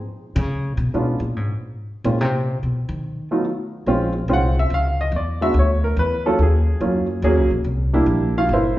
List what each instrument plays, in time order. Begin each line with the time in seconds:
0.36 upright bass C#3
0.77 upright bass B2
0.94 upright bass B2, upright piano G#3 B3 C#4 D4 F4
1.20 upright bass A#2
1.36 upright bass G#2
2.04 upright bass A#2, upright piano G#3 A#3 C4 C#4 F4
2.21 upright bass C3
2.63 upright bass B2
2.89 upright bass D#3
3.31 upright piano F#3 A3 B3 D#4 F4
3.86 upright bass A#1, upright piano G#3 C4 C#4 F4
4.28 upright bass C2, upright piano G#3 C4 C#4 F4
4.33 upright piano F#5
4.59 upright piano E5
4.70 upright bass C#2
4.74 upright piano F5
5.01 upright piano D#5
5.12 upright bass E2
5.16 upright piano D5
5.41 upright piano G#3 B3 D4 F#4 E5
5.54 upright bass D2
5.59 upright piano C#5
5.84 upright piano A#4
5.96 upright bass E2, upright piano B4
6.26 upright piano F#3 A#3 C#4 F4 A4
6.39 upright bass D#2, upright piano G#4
6.81 upright bass F#2, upright piano F#3 A#3 C#4 F4
7.22 upright bass D#2, upright piano F#3 A#3 C#4 G#4
7.36 upright bass C#2
7.50 upright bass A#1
7.64 upright bass C2
7.93 upright piano G3 A#3 D4 E4
8.06 upright bass A#1
8.38 upright piano F4 F5
8.49 upright bass G1
8.53 upright piano E4 A#4 C5 E5